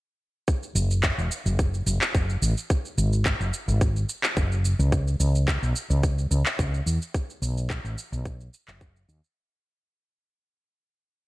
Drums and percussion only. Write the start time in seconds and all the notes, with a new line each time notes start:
0.48 kick, shaker
0.63 shaker
0.76 shaker
0.91 shaker
1.03 kick, clap, shaker
1.19 shaker
1.32 shaker
1.46 shaker
1.59 kick, shaker
1.74 shaker
1.87 shaker
2.01 clap, shaker
2.15 kick, shaker
2.30 shaker
2.43 shaker
2.58 shaker
2.70 kick, shaker
2.85 shaker
2.98 shaker
3.13 shaker
3.25 kick, clap, shaker
3.41 shaker
3.54 shaker
3.69 shaker
3.81 kick, shaker
3.96 shaker
4.09 shaker
4.24 clap, shaker
4.37 kick, shaker
4.52 shaker
4.65 shaker
4.80 shaker
4.92 kick, shaker
5.08 shaker
5.20 shaker
5.35 shaker
5.48 kick, clap, shaker
5.63 shaker
5.76 shaker
5.91 shaker
6.03 kick, shaker
6.18 shaker
6.31 shaker
6.46 clap, shaker
6.59 kick, shaker
6.74 shaker
6.87 shaker
7.02 shaker
7.14 kick, shaker
7.30 shaker
7.43 shaker
7.58 shaker
7.70 kick, clap, shaker
7.85 shaker
7.98 shaker
8.13 shaker
8.25 kick, shaker
8.41 shaker
8.54 shaker
8.68 clap, shaker
8.81 kick, shaker
8.96 shaker
9.09 shaker
9.24 shaker